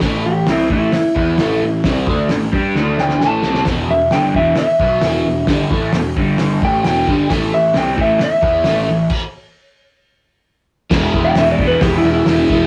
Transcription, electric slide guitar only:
\new Staff \with { instrumentName = "Electric slide guitar" } { \time 4/4 \key a \major \tempo 4 = 132 r8 g'8 e'8 e'2~ e'8~ | e'8 r2 g''8 a''4 | r8 e''8 g''8 e''8 e''2 | r2 r8 g''8 g''4 |
r8 e''8 g''8 e''8 e''2 | r1 | \key e \major \tuplet 3/2 { r4 g''8 e''8 d''8 b'8 g'8 e'8 e'8~ } e'4 | }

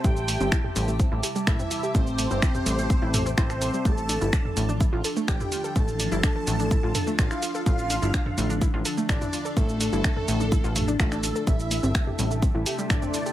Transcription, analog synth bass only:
\new Staff \with { instrumentName = "Analog synth bass" } { \clef bass \time 4/4 \key d \dorian \tempo 4 = 126 a,,8. g,,16 r8 a,,8. a,,16 r8 a,,16 r8. | a,,8. g,,16 r8 a,,8. a,,8. a,,8. r16 | a,,8. g,,16 r8 a,,8. a,,16 r8 a,,16 r8. | a,,8. g,,16 r8 a,,8. a,,16 r8 a,,16 r8. |
a,,8. g,,16 r8 a,,8. a,,16 r8 a,,16 r8. | a,,8. g,,16 r8 a,,8. a,,8. a,,8. r16 | a,,8. g,,16 r8 a,,8. a,,16 r8 a,,16 r8. | }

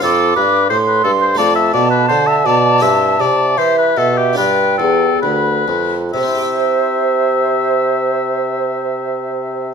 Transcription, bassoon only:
\new Staff \with { instrumentName = "Bassoon" } { \clef bass \time 4/4 \key c \major \tempo 4 = 73 f,8 g,8 a,8 g,8 f,8 b,8 d8 b,8 | g,8 c8 e8 b,8 g,8 e,8 d,8 f,8 | c1 | }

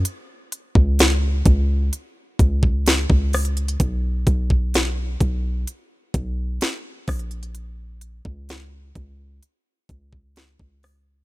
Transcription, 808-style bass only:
\new Staff \with { instrumentName = "808-style bass" } { \clef bass \time 4/4 \key bes \phrygian \tempo 4 = 64 r8. des,8. des,8 r8 des,8. des,8. | ces,8 ces,4 ces,8 r8 ces,8 r8 bes,,8~ | bes,,8. des,8. des,8 r8 des,8. des,8. | }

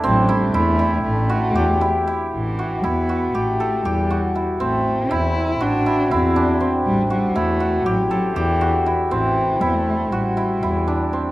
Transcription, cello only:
\new Staff \with { instrumentName = "Cello" } { \clef bass \time 9/8 \key a \dorian \tempo 4. = 79 fis8 g8 a4 a2 r8 | e4 b4 a4 g4 r8 | a4 e'4 d'4 c'4 r8 | g8 g8 a4 fis8 fis8 e4 r8 |
e4 b16 a8. g2 r8 | }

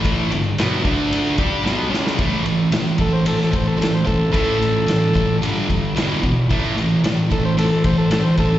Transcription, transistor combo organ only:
\new Staff \with { instrumentName = "Transistor combo organ" } { \time 4/4 \key g \lydian \tempo 4 = 112 r1 | r4. a'16 c''16 a'16 a'16 c''16 a'16 a'16 c''16 a'8 | a'2 r2 | r4. a'16 c''16 a'16 a'16 c''16 a'16 a'16 c''16 a'8 | }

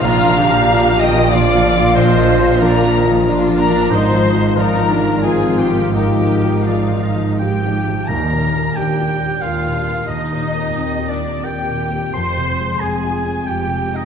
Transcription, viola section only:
\new Staff \with { instrumentName = "Viola section" } { \time 3/4 \key f \dorian \tempo 4 = 91 << { f'8 g'4. f'4~ | f'2 d'4 | ees'2 f'4 | ees'2 g'4 |
\key ees \major bes'4 g'4 f'4 | ees'4. d'8 g'4 | c''4 aes'4 g'8. ees'16 | } \\ { d'4 d'8 ees8 f'8 f'8~ | f'4 d'8 ees8 f'8 d'8 | ees'4 ees'8 d'8 c'4 | ees'2 r4 |
r2. | r2. | r2. | } >> }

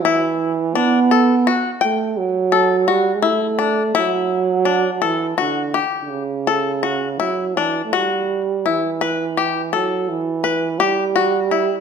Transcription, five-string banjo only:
\new Staff \with { instrumentName = "Five-string banjo" } { \time 11/8 \key d \major \tempo 4 = 84 e'4 d'8 a'8 fis'8 g''4 a'8 fis'8 e'8 d'8 | e'4 d'8 a'8 fis'8 g'4 a'8 fis'8 e'8 d'8 | fis'4 e'8 b'8 g'8 a'4 b'8 g'8 fis'8 e'8 | }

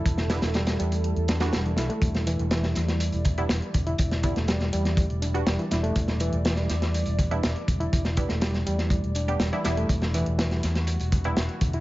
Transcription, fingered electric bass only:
\new Staff \with { instrumentName = "Fingered electric bass" } { \clef bass \time 4/4 \key e \minor \tempo 4 = 122 e,,8. e,,8. e,8. e,8. e,,8 b,,16 r16 | e,,8. e,,8. e,8. e,,8. e,,16 r16 e,,8 | e,,8. e,,8. e,8. e,,8. e,,16 r16 e,,8 | e,,8. e,,8. e,8. e,,8. e,,16 r16 e,,8 |
e,,8. e,,8. e,8. e,,8. e,,16 r16 e,,8 | e,,8. e,,8. e,8. e,,8. e,,16 r16 e,,8 | }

